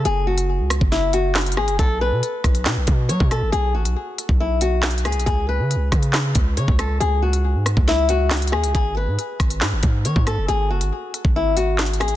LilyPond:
<<
  \new Staff \with { instrumentName = "Nylon-string guitar" } { \time 4/4 \key cis \minor \tempo 4 = 138 gis'8 fis'4. e'8 fis'4 gis'8 | a'8 b'2~ b'8 cis''8 a'8 | gis'8 fis'4. e'8 fis'4 gis'8 | gis'8 b'2~ b'8 cis''8 a'8 |
gis'8 fis'4. e'8 fis'4 gis'8 | gis'8 b'2~ b'8 cis''8 a'8 | gis'8 fis'4. e'8 fis'4 gis'8 | }
  \new Staff \with { instrumentName = "808-style bass" } { \clef bass \time 4/4 \key cis \minor fis,,4~ fis,,16 cis,8 fis,,4.~ fis,,16 gis,,16 fis,,16 | b,,8. b,16 r8 b,,8 b,16 b,,16 b,8 fis16 b,8 a,,16 | b,,8 a,,16 b,,16 r8. b,,4.~ b,,16 cis,16 b,,16 | cis,8. cis16. cis,16. cis4 cis,8 cis16 cis,8. |
cis,4~ cis,16 gis,8 cis,4.~ cis,16 dis,16 cis,16 | gis,,8. gis,16 r8 gis,,8 gis,16 gis,,16 gis,8 dis16 gis,8 fis,,16 | gis,,8 fis,,16 gis,,16 r8. gis,,4.~ gis,,16 a,,16 gis,,16 | }
  \new DrumStaff \with { instrumentName = "Drums" } \drummode { \time 4/4 hh8. hh16 r8 <hh ss>16 bd16 sn8 hh8 <hc hh sn>32 hh32 hh32 hh32 ss16 hh16 | <hh bd>4 hh8 <hh bd ss>16 hh16 <hc sn>8 <hh bd>8 hh16 bd16 <hh ss>8 | hh8. hh16 r8 hh16 bd16 r8 hh8 \tuplet 3/2 { <hc hh sn>16 hh16 hh16 <hh ss>16 hh16 hh16 } | <hh bd>4 hh8 <hh bd ss>16 hh16 <hc sn>8 <hh bd>8 hh16 bd16 <hh ss>8 |
hh8. hh16 r8 <hh ss>16 bd16 sn8 hh8 <hc hh sn>32 hh32 hh32 hh32 ss16 hh16 | <hh bd>4 hh8 <hh bd ss>16 hh16 <hc sn>8 <hh bd>8 hh16 bd16 <hh ss>8 | hh8. hh16 r8 hh16 bd16 r8 hh8 \tuplet 3/2 { <hc hh sn>16 hh16 hh16 <hh ss>16 hh16 r16 } | }
>>